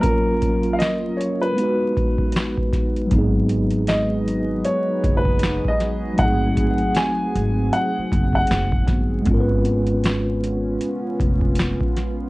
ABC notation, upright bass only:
X:1
M:4/4
L:1/16
Q:"Swing 16ths" 1/4=78
K:G#dor
V:1 name="Upright bass" clef=bass
z16 | G,,,8 z2 F,,,3 z3 | G,,,4 z2 G,,,2 z2 F,,,2 F,,,2 =G,,,2 | G,,,8 z2 E,,,3 z3 |]